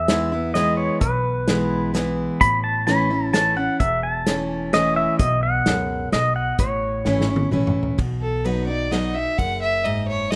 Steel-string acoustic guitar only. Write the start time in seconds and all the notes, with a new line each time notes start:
Already playing: E2
0.08 E3 G#3 B3 E4
0.32 B3 E4
0.55 E3 G#3 B3 E4
1.02 B2
1.48 E3 G#3 B3 E4
1.94 E3 G#3 B3 E4
2.41 A2
2.87 E3 A3 C#4 E4
3.10 C#4 E4
3.33 E3 A3 C#4 E4
3.56 C#4 E4
3.80 E2
4.26 E3 A3 C#4 E4
4.73 E3 A3 C#4 E4
5.20 B2
5.66 F#2
6.13 B2
6.60 A2
7.06 E3 A3 C#4 E4
7.29 C#4 E4
7.52 E3 A3 C#4 E4
7.98 B2
8.45 F#3 B3 D#4 F#4
8.68 D#4 F#4
8.91 F#3 B3 D#4 F#4
9.15 D#4 F#4
9.38 F#2
9.85 G#2
10.32 F#2